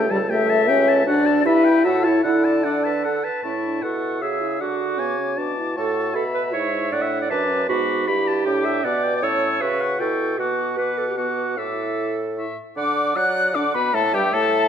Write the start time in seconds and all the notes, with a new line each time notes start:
Already playing: C#2 G4 A4 G5
0.10 G3 A4 A5
0.29 A3 G4 E5 G5
0.49 A4 A5
0.68 C#4 G4 G5
0.87 A4 A5
1.06 D2 D4 F#4 D5 F#5
1.25 A4 A5
1.45 G2 E4 G4 B4 E5
1.65 B4 G5
1.84 A2 F#4 A4 E5
2.04 E4 C#5 A5
2.23 D3 E4 A4 F#5
2.45 D5 A5
2.64 D4 D5 F#5
2.84 B4 A5
3.04 A4 F#5
3.24 B4 A5
3.43 A2 C#4 E4 A5 C#6
3.64 D4
3.82 B2 E4 A4 F#5 C#6
4.21 C#3 F#4 G#4 E5 E6
4.41 E4
4.60 D3 D4 F#4 F#5 D6
4.99 C#3 B3 G#5
5.18 C#4
5.37 B2 D4 A5 D6
5.57 E4
5.76 A2 F#4 A4 A5 C#6
6.15 B2 A4 E5 B5
6.34 B4
6.53 G#2 E4 C#5 C#6
6.73 E4
6.92 A2 D4 D5 F#5
7.02 E5
7.21 D5
7.30 F#2 D4 B4 A5 D6
7.49 C#4
7.68 G#2 B3 F#4 B5 D6
8.07 G2 E4 G4 B5
8.27 A5
8.45 A2 D4 G5 D6
8.65 E5
8.84 B2 B3 D5 F#5 D6
9.03 G5
9.16 D5
9.22 A2 C#4 C#5 A5 E6
9.61 C#3 F#4 B4 E5 C#6
9.81 F#5
10.00 B2 E4 A4 G5 C#6
10.38 B2 B3 F#4 F#5 D6
10.78 B3 B4 F#5 D6
10.98 A4
11.08 G4
11.17 B3 F#4 F#5 D6
11.57 A2 E4 A4 E5 D6
12.37 E4 E5 C#6
12.76 D3 D4 D5 F#5 D6
13.15 F#3 F#4 D5 F#5 F#6
13.54 D3 D4 D5 F#5 D6
13.74 B2 B3 B4 B5
13.94 A2 A3 A4 E5 A5
14.13 G2 G3 G4 G5
14.32 A2 A3 A4 A5